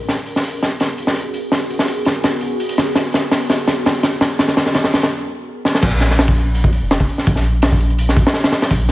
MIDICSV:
0, 0, Header, 1, 4, 480
1, 0, Start_track
1, 0, Tempo, 359281
1, 108, Time_signature, 4, 2, 24, 8
1, 11913, End_track
2, 0, Start_track
2, 0, Title_t, "Ambient pad"
2, 0, Program_c, 0, 92
2, 0, Note_on_c, 0, 70, 89
2, 103, Note_on_c, 0, 68, 76
2, 104, Note_on_c, 0, 59, 85
2, 104, Note_on_c, 0, 66, 78
2, 7732, Note_off_c, 0, 66, 0
2, 7732, Note_off_c, 0, 68, 0
2, 7733, Note_off_c, 0, 59, 0
2, 7734, Note_off_c, 0, 70, 0
2, 11913, End_track
3, 0, Start_track
3, 0, Title_t, "Sub bass"
3, 0, Program_c, 1, 38
3, 105, Note_on_c, 1, 32, 97
3, 1413, Note_off_c, 1, 32, 0
3, 1435, Note_on_c, 1, 39, 99
3, 1770, Note_off_c, 1, 39, 0
3, 2030, Note_on_c, 1, 32, 103
3, 3335, Note_off_c, 1, 32, 0
3, 3950, Note_on_c, 1, 32, 99
3, 5255, Note_off_c, 1, 32, 0
3, 5274, Note_on_c, 1, 39, 95
3, 5610, Note_off_c, 1, 39, 0
3, 5867, Note_on_c, 1, 32, 99
3, 6827, Note_off_c, 1, 32, 0
3, 7783, Note_on_c, 1, 34, 101
3, 9092, Note_off_c, 1, 34, 0
3, 9112, Note_on_c, 1, 29, 103
3, 9449, Note_off_c, 1, 29, 0
3, 9712, Note_on_c, 1, 34, 101
3, 11016, Note_off_c, 1, 34, 0
3, 11633, Note_on_c, 1, 34, 106
3, 11913, Note_off_c, 1, 34, 0
3, 11913, End_track
4, 0, Start_track
4, 0, Title_t, "Drums"
4, 113, Note_on_c, 9, 38, 46
4, 119, Note_on_c, 9, 46, 85
4, 246, Note_off_c, 9, 38, 0
4, 252, Note_off_c, 9, 46, 0
4, 344, Note_on_c, 9, 46, 66
4, 478, Note_off_c, 9, 46, 0
4, 483, Note_on_c, 9, 38, 44
4, 587, Note_on_c, 9, 46, 91
4, 616, Note_off_c, 9, 38, 0
4, 721, Note_off_c, 9, 46, 0
4, 835, Note_on_c, 9, 38, 51
4, 835, Note_on_c, 9, 46, 63
4, 968, Note_off_c, 9, 46, 0
4, 969, Note_off_c, 9, 38, 0
4, 1068, Note_on_c, 9, 46, 86
4, 1078, Note_on_c, 9, 38, 48
4, 1202, Note_off_c, 9, 46, 0
4, 1212, Note_off_c, 9, 38, 0
4, 1308, Note_on_c, 9, 46, 69
4, 1430, Note_on_c, 9, 38, 53
4, 1441, Note_off_c, 9, 46, 0
4, 1547, Note_on_c, 9, 46, 91
4, 1564, Note_off_c, 9, 38, 0
4, 1681, Note_off_c, 9, 46, 0
4, 1787, Note_on_c, 9, 46, 66
4, 1921, Note_off_c, 9, 46, 0
4, 2025, Note_on_c, 9, 38, 61
4, 2031, Note_on_c, 9, 46, 81
4, 2159, Note_off_c, 9, 38, 0
4, 2165, Note_off_c, 9, 46, 0
4, 2275, Note_on_c, 9, 46, 61
4, 2393, Note_on_c, 9, 38, 53
4, 2409, Note_off_c, 9, 46, 0
4, 2512, Note_on_c, 9, 46, 87
4, 2526, Note_off_c, 9, 38, 0
4, 2646, Note_off_c, 9, 46, 0
4, 2743, Note_on_c, 9, 46, 72
4, 2757, Note_on_c, 9, 38, 60
4, 2876, Note_on_c, 9, 42, 46
4, 2877, Note_off_c, 9, 46, 0
4, 2891, Note_off_c, 9, 38, 0
4, 2989, Note_on_c, 9, 46, 96
4, 2993, Note_on_c, 9, 38, 75
4, 3010, Note_off_c, 9, 42, 0
4, 3122, Note_off_c, 9, 46, 0
4, 3127, Note_off_c, 9, 38, 0
4, 3219, Note_on_c, 9, 46, 70
4, 3353, Note_off_c, 9, 46, 0
4, 3471, Note_on_c, 9, 46, 72
4, 3596, Note_off_c, 9, 46, 0
4, 3596, Note_on_c, 9, 46, 80
4, 3713, Note_off_c, 9, 46, 0
4, 3713, Note_on_c, 9, 46, 77
4, 3714, Note_on_c, 9, 38, 73
4, 3824, Note_off_c, 9, 46, 0
4, 3824, Note_on_c, 9, 46, 73
4, 3848, Note_off_c, 9, 38, 0
4, 3946, Note_on_c, 9, 38, 77
4, 3948, Note_off_c, 9, 46, 0
4, 3948, Note_on_c, 9, 46, 84
4, 4080, Note_off_c, 9, 38, 0
4, 4081, Note_off_c, 9, 46, 0
4, 4176, Note_on_c, 9, 46, 64
4, 4196, Note_on_c, 9, 38, 77
4, 4309, Note_off_c, 9, 46, 0
4, 4329, Note_off_c, 9, 38, 0
4, 4427, Note_on_c, 9, 38, 80
4, 4429, Note_on_c, 9, 46, 89
4, 4561, Note_off_c, 9, 38, 0
4, 4562, Note_off_c, 9, 46, 0
4, 4664, Note_on_c, 9, 46, 69
4, 4671, Note_on_c, 9, 38, 75
4, 4798, Note_off_c, 9, 46, 0
4, 4804, Note_off_c, 9, 38, 0
4, 4909, Note_on_c, 9, 38, 80
4, 4912, Note_on_c, 9, 46, 84
4, 5043, Note_off_c, 9, 38, 0
4, 5045, Note_off_c, 9, 46, 0
4, 5154, Note_on_c, 9, 46, 72
4, 5160, Note_on_c, 9, 38, 90
4, 5263, Note_off_c, 9, 46, 0
4, 5263, Note_on_c, 9, 46, 68
4, 5293, Note_off_c, 9, 38, 0
4, 5344, Note_off_c, 9, 46, 0
4, 5344, Note_on_c, 9, 46, 59
4, 5387, Note_off_c, 9, 46, 0
4, 5387, Note_on_c, 9, 38, 76
4, 5387, Note_on_c, 9, 46, 87
4, 5520, Note_off_c, 9, 46, 0
4, 5521, Note_off_c, 9, 38, 0
4, 5624, Note_on_c, 9, 38, 87
4, 5628, Note_on_c, 9, 46, 70
4, 5758, Note_off_c, 9, 38, 0
4, 5762, Note_off_c, 9, 46, 0
4, 5866, Note_on_c, 9, 38, 90
4, 5871, Note_on_c, 9, 46, 64
4, 5985, Note_off_c, 9, 38, 0
4, 5985, Note_on_c, 9, 38, 74
4, 6005, Note_off_c, 9, 46, 0
4, 6105, Note_off_c, 9, 38, 0
4, 6105, Note_on_c, 9, 38, 102
4, 6112, Note_on_c, 9, 46, 59
4, 6226, Note_off_c, 9, 38, 0
4, 6226, Note_on_c, 9, 38, 78
4, 6245, Note_off_c, 9, 46, 0
4, 6336, Note_on_c, 9, 46, 101
4, 6343, Note_off_c, 9, 38, 0
4, 6343, Note_on_c, 9, 38, 93
4, 6465, Note_off_c, 9, 38, 0
4, 6465, Note_on_c, 9, 38, 86
4, 6470, Note_off_c, 9, 46, 0
4, 6584, Note_on_c, 9, 46, 72
4, 6595, Note_off_c, 9, 38, 0
4, 6595, Note_on_c, 9, 38, 89
4, 6706, Note_off_c, 9, 46, 0
4, 6706, Note_on_c, 9, 46, 84
4, 6723, Note_off_c, 9, 38, 0
4, 6723, Note_on_c, 9, 38, 93
4, 6840, Note_off_c, 9, 46, 0
4, 6856, Note_off_c, 9, 38, 0
4, 7549, Note_on_c, 9, 38, 55
4, 7679, Note_off_c, 9, 38, 0
4, 7679, Note_on_c, 9, 38, 72
4, 7783, Note_on_c, 9, 49, 88
4, 7784, Note_on_c, 9, 36, 118
4, 7786, Note_on_c, 9, 46, 92
4, 7813, Note_off_c, 9, 38, 0
4, 7917, Note_off_c, 9, 49, 0
4, 7918, Note_off_c, 9, 36, 0
4, 7920, Note_off_c, 9, 46, 0
4, 8017, Note_on_c, 9, 46, 65
4, 8023, Note_on_c, 9, 38, 45
4, 8150, Note_off_c, 9, 46, 0
4, 8156, Note_off_c, 9, 38, 0
4, 8159, Note_on_c, 9, 38, 38
4, 8266, Note_on_c, 9, 46, 90
4, 8268, Note_off_c, 9, 38, 0
4, 8268, Note_on_c, 9, 38, 109
4, 8391, Note_on_c, 9, 36, 94
4, 8399, Note_off_c, 9, 46, 0
4, 8402, Note_off_c, 9, 38, 0
4, 8499, Note_on_c, 9, 46, 64
4, 8525, Note_off_c, 9, 36, 0
4, 8633, Note_off_c, 9, 46, 0
4, 8745, Note_on_c, 9, 46, 85
4, 8871, Note_on_c, 9, 36, 87
4, 8878, Note_off_c, 9, 46, 0
4, 8985, Note_on_c, 9, 46, 67
4, 9005, Note_off_c, 9, 36, 0
4, 9119, Note_off_c, 9, 46, 0
4, 9230, Note_on_c, 9, 38, 117
4, 9232, Note_on_c, 9, 46, 90
4, 9353, Note_on_c, 9, 36, 91
4, 9364, Note_off_c, 9, 38, 0
4, 9366, Note_off_c, 9, 46, 0
4, 9470, Note_on_c, 9, 46, 60
4, 9487, Note_off_c, 9, 36, 0
4, 9594, Note_on_c, 9, 38, 39
4, 9603, Note_off_c, 9, 46, 0
4, 9707, Note_on_c, 9, 46, 89
4, 9712, Note_on_c, 9, 36, 105
4, 9727, Note_off_c, 9, 38, 0
4, 9829, Note_on_c, 9, 38, 39
4, 9840, Note_off_c, 9, 46, 0
4, 9846, Note_off_c, 9, 36, 0
4, 9939, Note_on_c, 9, 46, 66
4, 9963, Note_off_c, 9, 38, 0
4, 10073, Note_off_c, 9, 46, 0
4, 10181, Note_on_c, 9, 46, 97
4, 10190, Note_on_c, 9, 38, 122
4, 10313, Note_on_c, 9, 36, 96
4, 10314, Note_off_c, 9, 46, 0
4, 10324, Note_off_c, 9, 38, 0
4, 10428, Note_on_c, 9, 46, 65
4, 10447, Note_off_c, 9, 36, 0
4, 10558, Note_on_c, 9, 42, 46
4, 10561, Note_off_c, 9, 46, 0
4, 10668, Note_on_c, 9, 46, 91
4, 10691, Note_off_c, 9, 42, 0
4, 10801, Note_off_c, 9, 46, 0
4, 10807, Note_on_c, 9, 38, 52
4, 10910, Note_on_c, 9, 36, 94
4, 10912, Note_on_c, 9, 46, 70
4, 10940, Note_off_c, 9, 38, 0
4, 11043, Note_off_c, 9, 36, 0
4, 11043, Note_on_c, 9, 38, 109
4, 11046, Note_off_c, 9, 46, 0
4, 11137, Note_off_c, 9, 38, 0
4, 11137, Note_on_c, 9, 38, 106
4, 11145, Note_on_c, 9, 46, 74
4, 11271, Note_off_c, 9, 38, 0
4, 11275, Note_on_c, 9, 38, 111
4, 11276, Note_off_c, 9, 46, 0
4, 11276, Note_on_c, 9, 46, 72
4, 11383, Note_off_c, 9, 38, 0
4, 11383, Note_on_c, 9, 38, 104
4, 11386, Note_off_c, 9, 46, 0
4, 11386, Note_on_c, 9, 46, 73
4, 11515, Note_off_c, 9, 46, 0
4, 11515, Note_on_c, 9, 46, 76
4, 11516, Note_off_c, 9, 38, 0
4, 11518, Note_on_c, 9, 38, 103
4, 11632, Note_on_c, 9, 36, 103
4, 11643, Note_off_c, 9, 46, 0
4, 11643, Note_on_c, 9, 46, 94
4, 11652, Note_off_c, 9, 38, 0
4, 11766, Note_off_c, 9, 36, 0
4, 11776, Note_off_c, 9, 46, 0
4, 11872, Note_on_c, 9, 38, 44
4, 11872, Note_on_c, 9, 46, 70
4, 11913, Note_off_c, 9, 38, 0
4, 11913, Note_off_c, 9, 46, 0
4, 11913, End_track
0, 0, End_of_file